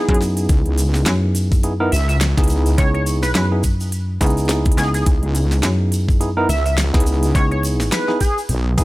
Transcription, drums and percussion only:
0.08 kick, closed hi-hat
0.14 closed hi-hat
0.21 snare, cabasa
0.37 closed hi-hat, cabasa
0.49 kick, closed hi-hat, cabasa
0.66 closed hi-hat
0.78 closed hi-hat, cabasa
0.94 snare, cabasa
1.06 snare, closed hi-hat, cabasa
1.35 closed hi-hat, cabasa
1.52 kick, cabasa
1.63 closed hi-hat, cabasa
1.92 closed hi-hat, cabasa
2.09 closed hi-hat, cabasa
2.21 snare, closed hi-hat, cabasa
2.38 kick, snare, closed hi-hat
2.44 closed hi-hat
2.48 closed hi-hat, cabasa
2.52 closed hi-hat
2.66 closed hi-hat, cabasa
2.78 kick, closed hi-hat, cabasa
2.94 closed hi-hat
3.06 closed hi-hat, cabasa
3.23 snare, cabasa
3.35 snare, closed hi-hat, cabasa
3.63 kick, closed hi-hat, cabasa
3.80 cabasa
3.92 closed hi-hat, cabasa
4.21 kick, closed hi-hat, cabasa
4.26 closed hi-hat
4.30 closed hi-hat
4.37 closed hi-hat, cabasa
4.40 closed hi-hat
4.45 snare, closed hi-hat
4.49 closed hi-hat, cabasa
4.65 kick, closed hi-hat
4.72 closed hi-hat
4.78 snare, cabasa
4.83 snare
4.87 snare
4.94 snare, closed hi-hat, cabasa
4.97 snare
5.02 snare
5.06 kick, closed hi-hat, cabasa
5.23 closed hi-hat
5.35 closed hi-hat, cabasa
5.51 snare, cabasa
5.63 snare, closed hi-hat, cabasa
5.92 closed hi-hat, cabasa
6.09 kick, cabasa
6.21 closed hi-hat, cabasa
6.49 closed hi-hat, cabasa
6.66 closed hi-hat, cabasa
6.78 snare, closed hi-hat, cabasa
6.94 kick, snare, closed hi-hat
7.00 closed hi-hat
7.06 cabasa
7.23 closed hi-hat, cabasa
7.35 kick, closed hi-hat, cabasa
7.51 closed hi-hat
7.63 closed hi-hat, cabasa
7.80 snare, cabasa
7.92 snare, closed hi-hat, cabasa
8.08 snare
8.20 kick, closed hi-hat, cabasa
8.38 cabasa
8.49 closed hi-hat, cabasa
8.78 kick, closed hi-hat, cabasa

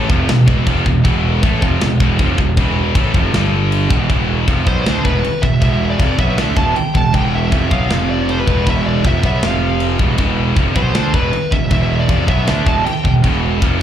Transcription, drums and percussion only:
0.10 kick
0.29 snare, china
0.48 kick
0.67 kick, china
0.86 kick
1.05 kick, china
1.43 kick, china
1.62 kick
1.81 snare, china
2.00 kick
2.19 kick, china
2.38 kick
2.57 kick, china
2.95 kick, china
3.14 kick
3.34 snare, china
3.72 china
3.90 kick
4.10 kick, china
4.48 kick, china
4.67 kick
4.86 snare, china
5.05 kick
5.24 china
5.43 kick
5.61 kick, china
6.00 kick, china
6.19 kick
6.38 snare, china
6.57 kick
6.76 china
6.95 kick
7.14 kick, china
7.52 kick, china
7.71 kick
7.90 snare, china
8.29 china
8.47 kick
8.67 kick, china
9.04 kick, china
9.23 kick
9.42 snare, china
9.80 china
9.99 kick
10.18 kick, china
10.56 kick, china
10.76 kick
10.94 snare, china
11.14 kick
11.33 china
11.52 kick
11.70 kick, china
12.09 kick, china
12.28 kick
12.47 snare, china
12.67 kick
12.86 china
13.05 kick
13.24 kick, china
13.62 kick, china

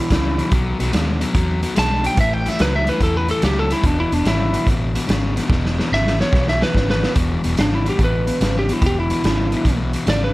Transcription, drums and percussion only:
0.10 kick, snare, closed hi-hat
0.39 closed hi-hat
0.52 kick, closed hi-hat
0.80 snare, closed hi-hat
0.93 snare, closed hi-hat
1.21 closed hi-hat
1.35 kick, closed hi-hat
1.63 closed hi-hat
1.76 snare, closed hi-hat
2.04 closed hi-hat
2.17 kick, closed hi-hat
2.46 snare, closed hi-hat
2.59 snare, closed hi-hat
2.87 closed hi-hat
3.01 kick, snare, closed hi-hat
3.28 closed hi-hat
3.42 snare, closed hi-hat
3.70 snare, closed hi-hat
3.84 kick, closed hi-hat
4.12 closed hi-hat
4.25 snare, closed hi-hat
4.54 closed hi-hat
4.67 kick, closed hi-hat
4.95 closed hi-hat
5.09 snare, closed hi-hat
5.37 snare, closed hi-hat
5.50 kick, snare
5.65 snare
5.79 snare
5.94 snare
6.07 snare
6.20 snare
6.33 kick, snare
6.48 snare
6.62 snare
6.75 kick, snare
6.90 snare
7.03 snare
7.15 kick, closed hi-hat
7.44 closed hi-hat
7.57 snare, closed hi-hat
7.86 closed hi-hat
7.99 kick, closed hi-hat
8.27 closed hi-hat
8.41 snare, closed hi-hat
8.69 closed hi-hat
8.82 kick, closed hi-hat
9.10 closed hi-hat
9.24 snare, closed hi-hat
9.52 closed hi-hat
9.65 kick, snare, closed hi-hat
9.93 closed hi-hat
10.07 snare, closed hi-hat

